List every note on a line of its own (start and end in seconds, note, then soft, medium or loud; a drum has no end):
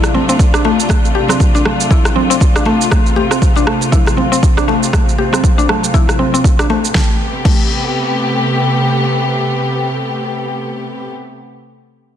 0.00 6.91 C3 medium
0.00 6.91 A3 medium
0.00 2.88 D4 medium
0.00 6.91 F4 medium
0.00 cross-stick medium
0.00 muted conga soft
0.00 shaker soft
0.14 0.28 C4 medium
0.14 high conga medium
0.14 low conga medium
0.29 0.35 C4 loud
0.29 shaker medium
0.39 kick loud
0.39 muted conga soft
0.39 shaker medium
0.54 0.64 D4 loud
0.54 cross-stick medium
0.54 shaker soft
0.65 0.78 A3 loud
0.65 muted conga soft
0.65 high conga medium
0.80 shaker medium
0.89 1.03 A3 medium
0.89 kick loud
0.89 cross-stick medium
0.89 muted conga soft
0.89 high conga medium
0.89 shaker medium
1.05 shaker soft
1.15 1.28 G4 medium
1.15 muted conga soft
1.28 1.35 C4 loud
1.28 cross-stick medium
1.28 low conga medium
1.28 shaker medium
1.40 kick loud
1.40 high conga medium
1.40 shaker medium
1.55 1.64 D4 loud
1.55 muted conga medium
1.55 shaker soft
1.65 1.79 A3 loud
1.65 cross-stick medium
1.65 low conga medium
1.80 muted conga soft
1.80 shaker medium
1.91 2.04 E4 medium
1.91 kick loud
1.91 high conga medium
1.91 low conga medium
1.91 shaker medium
2.05 cross-stick medium
2.05 muted conga soft
2.05 shaker soft
2.16 2.29 C4 medium
2.16 low conga medium
2.30 2.36 C4 loud
2.30 shaker medium
2.40 kick loud
2.40 muted conga soft
2.40 shaker medium
2.56 2.65 D4 loud
2.56 cross-stick medium
2.56 shaker soft
2.65 2.79 A3 loud
2.65 muted conga medium
2.65 high conga medium
2.81 shaker medium
2.91 3.04 A3 medium
2.91 6.91 C4 medium
2.91 kick loud
2.91 cross-stick medium
2.91 muted conga soft
2.91 high conga medium
2.91 shaker medium
3.06 shaker soft
3.16 3.29 G4 medium
3.16 muted conga soft
3.16 high conga medium
3.31 3.37 C4 loud
3.31 cross-stick medium
3.31 shaker medium
3.42 kick loud
3.42 high conga medium
3.42 shaker medium
3.56 3.66 D4 loud
3.56 muted conga soft
3.56 shaker soft
3.67 3.80 A3 loud
3.67 cross-stick medium
3.81 muted conga soft
3.81 shaker medium
3.92 4.05 E4 loud
3.92 kick loud
3.92 low conga loud
3.92 shaker medium
4.07 cross-stick medium
4.07 muted conga soft
4.07 shaker soft
4.17 4.31 C4 medium
4.17 high conga medium
4.17 low conga medium
4.32 4.38 C4 loud
4.32 shaker medium
4.43 kick loud
4.43 muted conga soft
4.43 shaker medium
4.57 4.67 D4 loud
4.57 cross-stick medium
4.57 shaker soft
4.68 4.81 A3 medium
4.68 muted conga medium
4.68 high conga medium
4.83 shaker medium
4.93 5.06 A3 medium
4.93 kick loud
4.93 cross-stick medium
4.93 muted conga soft
4.93 high conga medium
4.93 shaker medium
5.09 shaker soft
5.18 5.31 G4 medium
5.18 muted conga soft
5.18 high conga medium
5.32 5.38 C4 loud
5.32 cross-stick medium
5.32 low conga medium
5.32 shaker medium
5.44 kick loud
5.44 high conga medium
5.44 shaker medium
5.58 5.68 D4 loud
5.58 muted conga soft
5.58 shaker soft
5.69 5.82 A3 loud
5.69 cross-stick medium
5.69 low conga medium
5.83 muted conga soft
5.83 shaker medium
5.94 6.07 E4 medium
5.94 kick loud
5.94 high conga medium
5.94 low conga loud
5.94 shaker medium
6.09 cross-stick medium
6.09 muted conga soft
6.09 shaker soft
6.19 6.33 C4 medium
6.19 low conga medium
6.34 6.39 C4 loud
6.34 high conga medium
6.34 shaker medium
6.44 kick loud
6.44 muted conga soft
6.44 shaker medium
6.59 6.69 D4 loud
6.59 cross-stick medium
6.59 shaker soft
6.70 6.83 A3 loud
6.70 muted conga medium
6.70 high conga medium
6.85 shaker medium
6.95 11.11 C3 medium
6.95 11.11 A3 medium
6.95 7.10 A3 medium
6.95 11.11 B3 medium
6.95 11.11 G4 medium
6.95 kick loud
6.95 snare medium
7.45 7.61 A3 medium
7.45 kick loud
7.45 crash medium